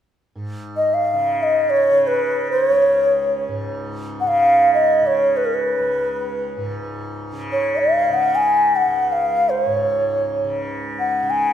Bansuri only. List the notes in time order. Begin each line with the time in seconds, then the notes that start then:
0.77 D#5
0.94 F5
1.43 D#5
1.70 C#5
2.07 B4
2.51 C5
2.67 C#5
4.20 F#5
4.28 F5
4.74 D#5
5.06 C#5
5.37 B4
5.46 A#4
5.54 B4
7.52 C#5
7.79 F5
8.13 F#5
8.35 G#5
8.76 F#5
9.12 F5
9.49 C5
9.66 C#5
10.99 F#5
11.30 G#5